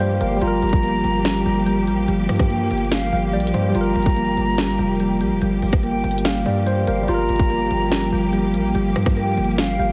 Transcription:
0.00 0.19 G2 loud
0.00 7.04 F3 medium
0.00 0.20 G3 medium
0.00 0.35 G3 medium
0.00 0.41 A#3 medium
0.00 7.04 A#3 medium
0.00 0.38 F4 medium
0.00 7.04 G4 medium
0.00 0.19 A#4 medium
0.00 0.20 C5 medium
0.00 0.44 D5 medium
0.00 0.43 F5 medium
0.00 0.43 G5 medium
0.21 0.41 G1 loud
0.21 0.40 G3 medium
0.21 0.40 A#4 medium
0.21 0.41 F5 medium
0.21 closed hi-hat medium
0.36 3.68 G3 medium
0.41 0.62 G1 loud
0.41 1.24 G3 medium
0.41 3.71 F4 medium
0.41 2.04 A#5 loud
0.41 closed hi-hat medium
0.48 3.74 A#4 medium
0.62 1.02 G1 loud
0.62 closed hi-hat soft
0.69 kick loud
0.69 closed hi-hat medium
0.76 closed hi-hat medium
0.83 2.08 A#3 medium
0.83 closed hi-hat medium
1.04 1.44 G1 loud
1.04 closed hi-hat medium
1.25 1.45 G3 medium
1.25 snare loud
1.25 closed hi-hat medium
1.46 1.89 G1 loud
1.46 1.65 G3 medium
1.66 1.87 G3 loud
1.66 closed hi-hat medium
1.87 2.07 A1 loud
1.87 2.07 G3 medium
1.87 closed hi-hat medium
2.08 2.28 G1 loud
2.08 2.90 G3 medium
2.08 closed hi-hat medium
2.29 2.69 G2 loud
2.29 cross-stick medium
2.29 closed hi-hat medium
2.29 open hi-hat medium
2.36 kick loud
2.36 cross-stick loud
2.36 closed hi-hat medium
2.43 closed hi-hat medium
2.50 3.75 A#3 medium
2.50 2.89 G5 medium
2.50 closed hi-hat medium
2.71 3.11 G1 loud
2.71 closed hi-hat medium
2.78 closed hi-hat medium
2.85 closed hi-hat soft
2.91 3.12 G3 medium
2.91 3.31 F5 loud
2.91 snare loud
2.91 closed hi-hat medium
3.12 3.35 G1 loud
3.12 3.32 G3 medium
3.12 3.32 F5 medium
3.33 3.53 A#1 loud
3.33 3.53 G3 medium
3.33 3.53 D5 medium
3.33 closed hi-hat soft
3.40 closed hi-hat medium
3.47 closed hi-hat medium
3.54 3.74 G2 loud
3.54 3.73 G3 medium
3.54 3.73 C5 medium
3.54 closed hi-hat medium
3.70 7.02 G3 medium
3.75 3.95 G1 loud
3.75 4.57 G3 medium
3.75 7.04 F4 medium
3.75 5.38 A#5 loud
3.75 closed hi-hat medium
3.81 6.86 A#4 medium
3.96 4.36 G1 loud
3.96 closed hi-hat soft
4.03 kick loud
4.03 closed hi-hat medium
4.10 closed hi-hat medium
4.16 5.41 A#3 medium
4.16 closed hi-hat medium
4.37 4.77 G1 loud
4.37 closed hi-hat medium
4.58 4.78 G3 medium
4.58 snare loud
4.58 closed hi-hat medium
4.79 5.22 F1 loud
4.79 4.99 G3 medium
5.00 5.20 G3 medium
5.00 closed hi-hat medium
5.21 5.33 A1 loud
5.21 5.40 G3 medium
5.21 closed hi-hat medium
5.31 5.41 F1 loud
5.42 5.62 G1 loud
5.42 6.24 G3 medium
5.42 closed hi-hat medium
5.62 6.02 G1 loud
5.62 open hi-hat medium
5.73 kick loud
5.73 cross-stick loud
5.83 7.08 A#3 medium
5.83 6.22 G5 medium
5.83 closed hi-hat medium
6.04 6.44 G1 loud
6.04 6.23 G5 medium
6.04 closed hi-hat soft
6.11 closed hi-hat medium
6.18 closed hi-hat medium
6.25 6.44 G3 medium
6.25 6.44 F5 medium
6.25 snare loud
6.25 closed hi-hat medium
6.46 6.86 G2 loud
6.46 6.65 G3 medium
6.46 6.65 D5 medium
6.66 6.87 G3 medium
6.66 6.86 C5 medium
6.66 closed hi-hat medium
6.87 7.07 G1 loud
6.87 7.07 G3 medium
6.87 7.07 A#4 medium
6.87 7.07 F5 medium
6.87 closed hi-hat medium
7.03 9.92 G3 medium
7.08 7.28 G1 loud
7.08 9.92 F3 medium
7.08 7.90 G3 loud
7.08 9.92 A#3 medium
7.08 9.92 F4 medium
7.08 9.92 G4 medium
7.08 8.71 A#5 loud
7.08 closed hi-hat medium
7.14 9.92 A#4 medium
7.29 7.69 G1 loud
7.29 closed hi-hat soft
7.36 kick loud
7.36 closed hi-hat medium
7.43 closed hi-hat medium
7.50 8.75 A#3 medium
7.50 closed hi-hat medium
7.71 8.11 G1 loud
7.71 closed hi-hat medium
7.92 8.11 G3 medium
7.92 snare loud
7.92 closed hi-hat medium
8.12 8.56 G1 loud
8.12 8.32 G3 medium
8.33 8.53 G3 medium
8.33 closed hi-hat medium
8.54 8.74 A1 loud
8.54 8.73 G3 medium
8.54 closed hi-hat medium
8.75 8.95 G1 loud
8.75 9.57 G3 medium
8.75 closed hi-hat medium
8.96 9.36 G2 loud
8.96 cross-stick medium
8.96 closed hi-hat medium
8.96 open hi-hat medium
9.03 kick loud
9.03 cross-stick loud
9.03 closed hi-hat medium
9.10 closed hi-hat medium
9.16 9.92 A#3 medium
9.16 9.56 G5 medium
9.16 closed hi-hat medium
9.37 9.77 G1 loud
9.37 closed hi-hat medium
9.44 closed hi-hat medium
9.51 closed hi-hat soft
9.58 9.78 G3 medium
9.58 9.92 F5 loud
9.58 snare loud
9.58 closed hi-hat medium
9.79 9.92 G1 loud
9.79 9.92 G3 medium
9.79 9.92 F5 medium

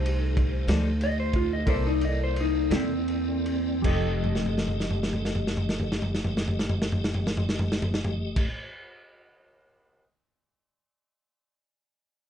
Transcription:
0.00 0.65 C2 medium
0.00 1.64 A3 medium
0.00 1.62 D#4 medium
0.00 1.64 D#4 medium
0.00 1.63 G4 medium
0.00 1.64 G4 medium
0.00 1.63 A4 medium
0.00 1.64 C5 medium
0.06 ride medium
0.37 kick medium
0.37 ride medium
0.68 1.63 D2 loud
0.68 0.89 F3 medium
0.68 0.88 D#4 medium
0.68 0.88 A4 medium
0.68 0.88 D5 medium
0.68 snare loud
0.68 ride medium
1.01 1.18 D#5 loud
1.01 ride medium
1.20 1.34 C5 medium
1.33 1.51 F4 loud
1.33 kick medium
1.33 ride medium
1.53 1.68 D#5 medium
1.66 2.68 C2 medium
1.66 1.87 C3 medium
1.66 3.81 A#3 medium
1.66 1.87 A#3 medium
1.66 3.79 E4 medium
1.66 3.82 E4 medium
1.66 1.88 E4 medium
1.66 3.80 A4 medium
1.66 1.88 A4 medium
1.66 3.80 A#4 medium
1.66 1.85 C5 loud
1.66 3.82 D5 medium
1.66 3.81 D5 medium
1.66 kick loud
1.66 ride medium
1.87 2.02 D#4 loud
2.01 2.20 D#5 loud
2.01 ride medium
2.24 2.38 C5 medium
2.36 ride medium
2.40 2.73 D#4 medium
2.70 3.80 E2 loud
2.70 2.93 C3 medium
2.70 2.93 A#3 medium
2.70 2.93 E4 medium
2.70 2.93 A4 medium
2.70 snare loud
2.70 ride medium
2.76 3.83 C4 loud
3.08 ride medium
3.46 ride medium
3.81 8.48 F1 medium
3.81 8.51 F3 medium
3.81 8.49 A3 medium
3.81 8.53 A3 medium
3.81 8.47 G4 medium
3.81 8.49 G4 medium
3.81 8.48 A4 medium
3.81 8.49 D#5 medium
3.81 kick loud
3.81 crash medium
3.87 8.54 D#4 medium
3.87 8.55 G4 medium
3.87 8.50 D#5 medium
4.24 floor tom soft
4.35 snare soft
4.46 floor tom soft
4.58 snare medium
4.68 floor tom medium
4.80 snare medium
4.91 floor tom medium
5.03 snare medium
5.13 floor tom medium
5.25 snare medium
5.35 floor tom medium
5.47 snare medium
5.57 floor tom medium
5.69 snare medium
5.80 floor tom medium
5.92 snare medium
6.02 floor tom medium
6.15 snare medium
6.24 floor tom medium
6.37 snare medium
6.48 floor tom medium
6.59 snare medium
6.69 floor tom medium
6.82 snare medium
6.92 floor tom medium
7.04 snare medium
7.14 floor tom medium
7.27 snare medium
7.37 floor tom medium
7.49 snare medium
7.59 floor tom medium
7.72 snare medium
7.82 floor tom medium
7.94 snare medium
8.04 floor tom medium
8.36 kick loud
8.36 crash medium

